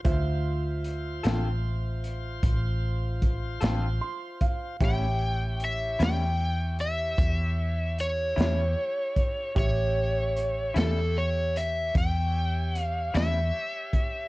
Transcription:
0.04 D2 F4 C5 E5, kick, closed hi-hat
0.84 closed hi-hat
1.23 A1 D3 C4 F4 A4, snare, closed hi-hat
2.04 closed hi-hat
2.43 A1, kick, closed hi-hat
3.22 kick, closed hi-hat
3.61 A1 D3 C4 F4 A4, snare, closed hi-hat
4.01 C6
4.41 F5, kick, closed hi-hat
4.80 A1 A2 G3 C#4 E4 G4 C#5 E5, kick, closed hi-hat
4.85 G5
5.60 closed hi-hat
5.65 E5
5.99 E2 A2 G3 C#4 E4, snare, closed hi-hat
6.03 G5
6.79 E5, closed hi-hat
7.18 E2, kick, closed hi-hat
7.98 C#5, closed hi-hat
8.36 E2 A2 G3 C#4 E4, closed hi-hat
8.41 snare
9.16 kick, closed hi-hat
9.55 A1 G4 C#5 E5, kick, closed hi-hat
10.37 closed hi-hat
10.74 E2 A2 G3 C#4 E4 A4, closed hi-hat
10.79 snare
11.18 C#5
11.56 E5, closed hi-hat
11.95 E2 G5, kick, closed hi-hat
12.75 closed hi-hat
12.81 F5
13.14 E2 A2 G3 C#4 E4 E5, snare, closed hi-hat
13.93 kick, closed hi-hat

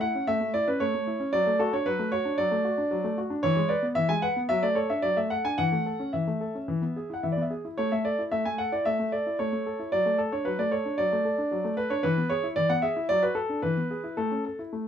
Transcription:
0.01 E4 F#5
0.15 C#4
0.27 A3 E5
0.41 A3
0.54 E4 D5
0.68 C#4 B4
0.80 A3 C#5
0.94 A3
1.07 E4
1.20 C#4
1.33 F#3 D5
1.47 A3
1.59 F#4 A4
1.73 D4 C#5
1.86 F#3 B4
1.99 A3
2.12 F#4 C#5
2.25 D4
2.38 F#3 D5
2.51 A3
2.65 F#4
2.78 D4
2.91 F#3
3.04 A3
3.18 F#4
3.30 D4
3.43 E3 C#5
3.56 G#3
3.69 B4 D5
3.82 B3
3.95 E3 E5
4.09 G#3 G#5
4.22 B4 F#5
4.36 B3
4.49 F#3 E5
4.63 A3 D5
4.75 A4 C#5
4.90 D4 E5
5.02 F#3 D5
5.17 A3 E5
5.30 A4 F#5
5.45 D4 G#5
5.58 E3 F#5
5.72 A3
5.86 A4
6.00 C#4
6.13 E3 E5
6.27 A3
6.41 A4
6.55 C#4
6.68 E3
6.82 B3
6.96 G#4
7.10 E4 F#5
7.23 E3 E5
7.32 D5
7.37 B3
7.42 E5
7.50 G#4
7.65 E4
7.78 A3 C#5
7.92 A3 E5
8.05 A4 D5
8.19 E4
8.31 A3 E5
8.45 A3 G#5
8.58 A4 F#5
8.72 E4 D5
8.85 A3 E5
8.99 A3
9.12 A4 D5
9.27 E4
9.39 A3 C#5
9.53 A3
9.66 A4
9.79 E4
9.92 F#3 D5
10.06 A3
10.18 A4
10.32 D4 C#5
10.45 F#3 B4
10.59 A3 D5
10.71 A4 C#5
10.85 D4
10.98 F#3 D5
11.12 A3
11.25 A4
11.38 D4
11.51 F#3
11.64 A3
11.77 A4 B4
11.90 D4 C#5
12.03 E3 B4
12.17 B3
12.30 G#4 C#5
12.43 E4
12.56 E3 D5
12.69 B3 F#5
12.82 G#4 E5
12.96 E4
13.09 F#3 D5
13.23 F#4 B4
13.35 A4
13.49 D4
13.62 E3 B4
13.77 B3
13.91 G#4
14.04 E4
14.17 A3 A4
14.31 C#4
14.59 E4
14.73 A3

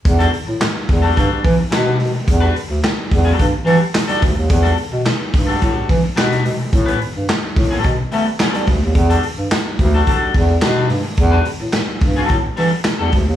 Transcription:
0.05 E2, muted clean electric guitar stroke, kick, closed hi-hat
0.19 G3 D4 F#4 A4, closed hi-hat
0.32 muted clean electric guitar stroke, open hi-hat
0.47 A2, muted clean electric guitar stroke
0.60 muted clean electric guitar stroke, snare, clap, closed hi-hat
0.75 muted clean electric guitar stroke
0.89 E2, kick, open hi-hat
1.02 G3 D4 F#4 A4
1.16 G2 G3 D4 F#4 A4, kick, closed hi-hat
1.44 E3, muted clean electric guitar stroke, kick, open hi-hat
1.59 muted clean electric guitar stroke
1.71 B2 G3 D4 F#4 B4, snare, clap, closed hi-hat
1.99 B2, muted clean electric guitar stroke, open hi-hat
2.14 muted clean electric guitar stroke
2.26 E2, muted clean electric guitar stroke, kick, closed hi-hat
2.40 G3 D4 F#4 B4
2.55 muted clean electric guitar stroke, open hi-hat
2.69 D2, muted clean electric guitar stroke
2.82 muted clean electric guitar stroke, snare, clap, closed hi-hat
2.97 muted clean electric guitar stroke
3.11 E2, kick, open hi-hat
3.25 G3 D4 F#4 A4
3.39 G2, kick, closed hi-hat
3.53 muted clean electric guitar stroke
3.65 E3 G3 D4 F#4 A4, open hi-hat
3.80 muted clean electric guitar stroke
3.94 muted clean electric guitar stroke, snare, clap, closed hi-hat
4.08 G3 D4 F#4 A4, closed hi-hat
4.22 D2, muted clean electric guitar stroke, kick, open hi-hat
4.35 D#2, muted clean electric guitar stroke
4.48 E2, muted clean electric guitar stroke, kick, closed hi-hat
4.63 G3 D4 F#4 A4, closed hi-hat
4.76 muted clean electric guitar stroke, open hi-hat
4.92 B2, muted clean electric guitar stroke
5.05 muted clean electric guitar stroke, snare, clap, closed hi-hat
5.19 muted clean electric guitar stroke
5.34 G2, kick, open hi-hat
5.47 G3 D4 F#4 A4
5.61 A2 G3 D4 F#4 A4, kick, closed hi-hat
5.89 E3, muted clean electric guitar stroke, kick, open hi-hat
6.04 muted clean electric guitar stroke
6.16 B2 G3 D4 F#4 B4, snare, clap, closed hi-hat
6.32 closed hi-hat
6.43 B2, muted clean electric guitar stroke, open hi-hat
6.59 muted clean electric guitar stroke
6.72 A2, muted clean electric guitar stroke, kick, closed hi-hat
6.86 G3 B3 C#4 B4, closed hi-hat
6.99 muted clean electric guitar stroke, open hi-hat
7.13 G2, muted clean electric guitar stroke
7.29 muted clean electric guitar stroke, snare, clap, closed hi-hat
7.43 muted clean electric guitar stroke
7.56 A2, kick, open hi-hat
7.71 G3 B3 C#4 A4
7.84 B2, kick, closed hi-hat
7.99 muted clean electric guitar stroke
8.12 G3 A3 B3 C#4 A4, open hi-hat
8.26 muted clean electric guitar stroke
8.39 F#3 A#3 C4 G#4, snare, clap, closed hi-hat
8.50 G3 B3 C#4 A4
8.54 G3, closed hi-hat
8.67 D2, muted clean electric guitar stroke, kick, open hi-hat
8.83 D#2, muted clean electric guitar stroke
8.95 E2, muted clean electric guitar stroke, kick, closed hi-hat
9.10 G3 D4 F#4 A4, closed hi-hat
9.23 muted clean electric guitar stroke, open hi-hat
9.38 G2, muted clean electric guitar stroke
9.51 muted clean electric guitar stroke, snare, clap, closed hi-hat
9.66 muted clean electric guitar stroke
9.79 D2, kick, open hi-hat
9.94 G3 D4 F#4 A4
10.07 G3 D4 F#4 A4, kick, closed hi-hat
10.34 E2, muted clean electric guitar stroke, kick, open hi-hat
10.49 muted clean electric guitar stroke
10.61 B2 G3 D4 F#4 B4, snare, clap, closed hi-hat
10.89 G2, muted clean electric guitar stroke, open hi-hat
11.03 muted clean electric guitar stroke
11.17 E2, muted clean electric guitar stroke, kick, closed hi-hat
11.31 G3 D4 F#4 B4
11.45 muted clean electric guitar stroke, open hi-hat
11.60 A2, muted clean electric guitar stroke
11.73 muted clean electric guitar stroke, snare, clap, closed hi-hat
11.88 muted clean electric guitar stroke
12.01 G2, kick, open hi-hat
12.16 G3 D4 F#4 A4
12.29 A2, kick, closed hi-hat
12.45 muted clean electric guitar stroke
12.57 E3 G3 D4 F#4 A4, open hi-hat
12.72 muted clean electric guitar stroke
12.84 muted clean electric guitar stroke, snare, clap, closed hi-hat
12.99 E2 G3 D4 F#4 A4
13.12 D2, muted clean electric guitar stroke, kick, open hi-hat
13.27 D#2, muted clean electric guitar stroke

